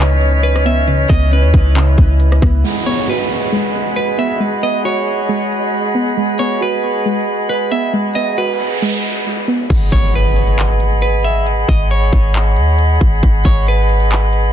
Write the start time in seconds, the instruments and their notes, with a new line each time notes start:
Already playing: 808-style bass C#2, synth texture E3 D#4 B4, synth pluck B3 C#4, flute section C#4 B4 C#5 D#5, clean electric guitar B4
0.00 synth pluck C#3, clap
0.21 closed hi-hat
0.43 clean electric guitar B4, closed hi-hat
0.56 cross-stick
0.65 synth pluck B3, clean electric guitar E5
0.88 synth pluck C#3, synth texture E4, closed hi-hat
1.09 808-style bass C#2, synth pluck B3, clean electric guitar D#5, kick
1.32 synth pluck C#4, clean electric guitar B4, closed hi-hat
1.43 808-style bass D#2
1.53 808-style bass C#2, kick, open hi-hat
1.76 synth pluck C#3, clap, closed hi-hat
1.98 808-style bass C#2, kick, closed hi-hat
2.20 closed hi-hat
2.32 cross-stick
2.42 808-style bass C#2, synth pluck B3, kick, cross-stick
2.64 synth pluck G#3, synth texture G#3 F#4 B4, flute section G#4 D#5 F#5 B5, downlifter
2.86 synth pluck B3, clean electric guitar C#5
3.08 synth pluck F#4, clean electric guitar B4
3.52 synth pluck G#3
3.96 clean electric guitar B4
4.18 synth pluck B3, clean electric guitar E5
4.40 synth pluck G#3
4.63 synth pluck B3, clean electric guitar D#5
4.85 synth pluck F#4, clean electric guitar C#5
5.29 synth pluck G#3
5.95 synth pluck B3
6.17 synth pluck G#3
6.39 synth pluck B3, clean electric guitar C#5
6.61 synth pluck F#4, clean electric guitar B4
7.05 synth pluck G#3
7.49 clean electric guitar B4
7.71 synth pluck B3, clean electric guitar E5
7.93 synth pluck G#3, noise sweep
8.15 synth pluck B3, clean electric guitar D#5
8.38 synth pluck F#4, clean electric guitar B4
8.82 synth pluck G#3
9.48 synth pluck B3
9.70 808-style bass G#1, flute section G#4 D#5 F#5 B5, kick, closed hi-hat, crash, impact
9.92 808-style bass G#1, clean electric guitar C#5, kick
10.14 clean electric guitar B4, closed hi-hat
10.36 closed hi-hat
10.47 closed hi-hat
10.59 clap, closed hi-hat
10.80 closed hi-hat
11.02 clean electric guitar B4, closed hi-hat
11.24 clean electric guitar E5
11.47 closed hi-hat
11.69 808-style bass G#1, clean electric guitar D#5, kick
11.91 clean electric guitar C#5, closed hi-hat
12.13 808-style bass G#1, kick, closed hi-hat
12.24 closed hi-hat
12.35 clap, closed hi-hat
12.57 808-style bass D#2, closed hi-hat
12.79 closed hi-hat
13.01 808-style bass G#1, kick
13.23 808-style bass G#1, kick, closed hi-hat
13.45 808-style bass G#1, clean electric guitar C#5, kick
13.67 clean electric guitar B4, closed hi-hat
13.89 closed hi-hat
14.00 closed hi-hat
14.11 clap, closed hi-hat
14.33 closed hi-hat